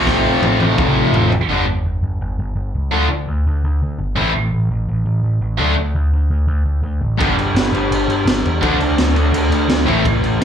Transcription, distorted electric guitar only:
0.00 1.29 F2 loud
0.00 1.30 C3 loud
0.00 1.31 F3 medium
0.00 0.74 A3 loud
1.49 1.63 G2 medium
1.49 1.63 D3 loud
1.49 1.64 G3 loud
2.91 3.06 D3 loud
2.91 3.06 A3 loud
2.91 3.06 D4 loud
4.16 4.30 A2 loud
4.16 4.31 E3 loud
4.16 4.31 A3 loud
5.58 5.73 D3 medium
5.58 5.73 A3 loud
5.58 5.73 D4 loud
7.19 7.33 G2 loud
7.19 7.34 D3 loud
7.19 7.34 G3 loud
8.61 8.76 D3 loud
8.61 8.76 A3 medium
8.61 8.77 D4 loud
9.86 10.01 A2 medium
9.86 10.01 E3 loud
9.86 10.02 A3 medium

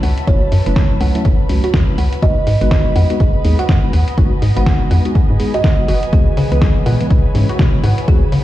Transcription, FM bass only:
0.03 0.13 C#2 loud
0.27 0.46 F#1 loud
0.52 0.62 F#2 loud
0.66 0.96 F#1 medium
1.01 1.11 C#2 loud
1.25 1.35 F#1 loud
1.49 1.60 C#2 loud
1.74 1.84 E2 medium
1.98 2.08 C#2 loud
2.23 2.41 G#1 loud
2.47 2.57 G#2 medium
2.61 2.91 G#1 medium
2.96 3.06 F2 loud
3.20 3.30 G#1 loud
3.44 3.55 D#2 loud
3.69 3.79 F#2 medium
3.93 4.03 D#2 medium
4.18 4.36 G#1 loud
4.42 4.52 G#2 loud
4.57 4.86 G#1 medium
4.91 5.01 F2 loud
5.30 5.37 G#2 medium
5.88 6.07 F#1 medium
6.13 6.31 C#2 loud
6.37 6.47 C#3 loud
6.52 6.81 C#2 medium
6.86 6.96 A#2 loud
7.10 7.21 C#2 loud
7.35 7.45 G#2 loud
7.59 7.69 B2 loud
7.84 7.94 G#2 loud
8.08 8.27 C#2 loud
8.32 8.43 C#3 loud

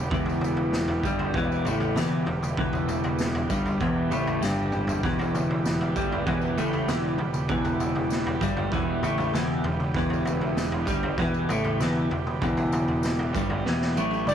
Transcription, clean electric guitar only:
0.12 1.03 E2 medium
1.05 1.34 G2 medium
1.35 1.65 E2 loud
1.66 1.96 A2 loud
1.96 2.26 E2 loud
2.27 2.52 E2 medium
2.58 3.50 E2 loud
3.50 3.80 G2 medium
3.81 4.11 E2 loud
4.11 4.41 A2 medium
4.42 5.03 G2 loud
5.04 5.95 E2 medium
5.96 6.26 G2 medium
6.27 6.57 E2 loud
6.57 6.87 A2 loud
6.89 7.18 E2 loud
7.19 7.44 E2 medium
7.50 8.41 E2 medium
8.41 8.71 G2 loud
8.73 9.03 E2 loud
9.04 9.33 A2 loud
9.35 9.64 E2 loud
9.66 9.90 E2 medium
9.96 10.87 E2 loud
10.88 11.18 G2 medium
11.19 11.49 E2 loud
11.50 11.80 A2 loud
11.81 12.10 E2 loud
12.11 12.36 E2 medium
12.42 13.34 E2 loud
13.35 13.65 G2 medium
13.66 13.97 E2 loud
13.98 14.28 A2 medium
14.28 14.34 G2 loud

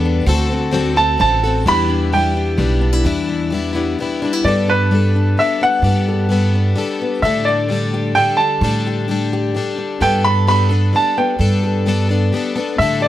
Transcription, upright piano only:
0.97 1.19 A5 medium
1.21 1.68 A5 medium
1.68 2.15 B5 loud
2.13 2.79 G5 medium
4.45 4.69 D5 medium
4.70 5.40 B4 medium
5.39 5.62 E5 medium
5.63 6.51 F#5 medium
7.22 7.47 E5 medium
7.45 8.17 D5 medium
8.15 8.39 G5 medium
8.37 9.27 A5 medium
10.02 10.26 G5 medium
10.24 10.46 B5 medium
10.48 10.91 B5 medium
10.96 11.17 A5 medium
11.18 11.83 G5 medium
12.78 13.00 E5 medium
13.02 13.08 D5 medium

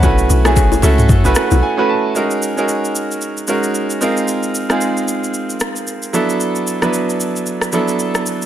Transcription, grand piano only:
0.00 0.36 A3 medium
0.00 0.36 C#4 medium
0.00 0.36 E4 medium
0.00 0.36 F#4 medium
0.00 0.18 C#5 medium
0.00 0.17 F#5 medium
0.04 0.36 B4 loud
0.45 0.76 A3 medium
0.45 0.76 C#4 medium
0.45 0.76 E4 medium
0.45 0.76 F#4 medium
0.45 0.77 G#4 loud
0.82 1.15 A3 medium
0.82 1.15 C#4 medium
0.82 1.16 E4 medium
0.82 1.16 F#4 medium
0.82 1.16 A4 loud
1.24 1.65 A3 medium
1.24 1.65 C#4 medium
1.24 1.66 E4 medium
1.24 1.66 F#4 medium
1.24 1.66 B4 loud
1.36 1.61 F#5 medium
1.63 1.87 G#5 medium
1.77 2.09 A3 medium
1.77 2.09 C#4 medium
1.77 2.09 E4 medium
1.77 2.09 F#4 medium
1.77 2.09 B4 loud
1.89 2.14 A5 medium
2.15 2.48 G#3 medium
2.15 2.48 C#4 medium
2.15 2.48 D#4 medium
2.15 2.49 F#4 medium
2.15 2.49 A#4 medium
2.57 3.31 G#3 medium
2.57 3.31 C#4 medium
2.57 3.31 D#4 medium
2.57 3.31 F#4 medium
2.57 3.32 A#4 medium
3.48 3.99 G#3 medium
3.48 4.01 C#4 medium
3.48 4.00 D#4 medium
3.48 4.02 F#4 medium
3.48 4.01 A#4 medium
4.01 4.54 G#3 medium
4.01 4.54 C4 medium
4.01 4.55 D#4 medium
4.01 4.55 F4 medium
4.01 4.55 A#4 medium
4.69 5.54 G#3 medium
4.69 5.54 C4 medium
4.69 5.54 D#4 medium
4.69 5.54 F4 medium
4.69 5.55 G#4 medium
6.13 6.67 F#3 medium
6.13 6.67 B3 medium
6.13 6.67 D4 medium
6.13 6.67 E4 medium
6.13 6.67 A4 medium
6.82 7.55 F#3 medium
6.82 7.56 B3 medium
6.82 7.56 D4 medium
6.82 7.56 E4 medium
6.82 7.56 B4 medium
7.73 8.38 F#3 medium
7.73 8.38 B3 medium
7.73 8.39 D4 medium
7.73 8.39 E4 medium
7.73 8.39 A4 medium

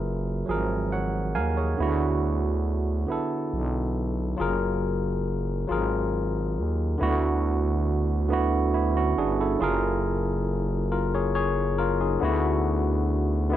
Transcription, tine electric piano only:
0.00 0.10 F#3 medium
0.00 0.11 F4 medium
0.00 0.12 G#4 medium
0.00 0.13 A#4 medium
0.00 1.79 B4 soft
0.00 1.79 E5 medium
0.46 1.41 F3 medium
0.46 1.40 F#3 medium
0.46 0.92 G#4 medium
0.51 0.92 A#4 medium
0.92 1.33 C#5 medium
0.92 1.33 F#5 medium
1.35 1.56 A#4 medium
1.35 1.55 F5 medium
1.35 1.75 G#5 medium
1.57 1.98 G#4 soft
1.57 1.98 C#5 medium
1.77 2.71 D3 medium
1.77 2.72 B3 medium
1.77 2.73 E4 medium
1.82 2.74 F#4 medium
3.07 4.01 D3 medium
3.07 4.02 B3 medium
3.07 4.03 E4 medium
3.12 4.04 A4 medium
4.37 5.31 F#3 medium
4.37 5.32 F4 medium
4.37 5.33 G#4 medium
4.41 5.34 A#4 medium
5.68 6.62 F#3 medium
5.68 6.63 F4 medium
5.68 6.64 G#4 medium
5.72 6.64 A#4 medium
6.98 7.92 D3 medium
6.98 7.93 B3 medium
6.98 7.94 E4 medium
7.03 7.95 F#4 medium
8.29 9.23 D3 medium
8.29 8.73 B3 medium
8.29 8.73 E4 medium
8.33 8.75 F#4 medium
8.74 8.95 B3 soft
8.74 8.94 E4 medium
8.97 9.17 C#4 medium
8.97 9.16 F#4 medium
9.18 9.38 D4 medium
9.18 9.38 G#4 medium
9.41 9.81 E4 soft
9.41 9.81 A4 medium
9.59 10.54 F#3 medium
9.59 10.54 F4 medium
9.59 10.55 G#4 medium
9.64 10.56 A#4 medium
10.92 11.12 F4 medium
10.92 11.12 A#4 medium
11.15 11.34 G#4 medium
11.15 11.34 C#5 medium
11.35 11.76 G#4 medium
11.35 11.76 C#5 medium
11.78 11.99 F4 medium
11.78 11.99 A#4 medium
12.01 12.41 D#4 medium
12.01 12.41 G#4 medium
12.20 13.14 D3 medium
12.20 13.15 B3 medium
12.20 13.16 E4 medium
12.25 13.17 F#4 medium
13.50 13.57 D3 medium
13.50 13.57 B3 medium
13.50 13.57 E4 medium

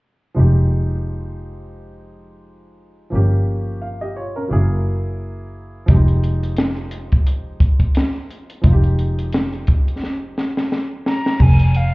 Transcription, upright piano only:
0.34 3.07 F3 medium
0.34 3.08 G#3 soft
0.34 3.09 D#4 medium
0.39 3.10 G4 medium
3.10 4.46 F3 medium
3.10 4.47 A#3 medium
3.10 3.81 C#4 medium
3.15 3.81 G4 medium
3.82 4.00 F5 medium
4.01 4.16 G4 soft
4.01 4.15 D#5 medium
4.16 4.35 F4 soft
4.16 4.35 C#5 medium
4.36 4.69 C#4 soft
4.36 4.69 A#4 medium
4.48 5.84 F#3 medium
4.48 5.85 A#3 medium
4.48 5.86 E4 medium
4.53 5.87 G#4 medium
5.86 8.59 F3 medium
5.86 5.96 G3 soft
5.86 8.61 D#4 medium
5.91 8.62 G#3 medium
5.91 8.61 G4 medium
8.61 11.35 F3 medium
8.61 11.36 G#3 soft
8.61 11.36 D#4 medium
8.67 8.73 F4 soft
8.73 11.40 G4 medium

